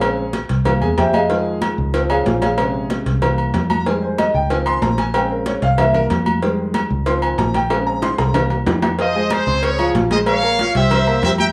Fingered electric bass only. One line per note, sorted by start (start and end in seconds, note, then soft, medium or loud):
0.00 0.44 A#1 medium
0.50 0.79 C2 loud
0.82 0.97 E2 medium
0.98 1.72 F2 medium
1.78 2.23 C#2 medium
2.26 3.01 A#1 loud
3.06 3.51 C2 medium
3.54 4.29 F2 medium
4.34 4.79 C#2 medium
4.82 5.57 A#1 medium
5.62 6.07 C2 medium
6.10 6.85 F2 loud
6.90 7.35 C#2 loud
7.38 8.13 A#1 loud
8.19 8.64 C2 medium
8.66 9.41 F2 medium
9.47 9.91 C#2 medium
9.95 10.69 A#1 loud
10.75 11.20 C2 medium
11.23 11.52 F2 loud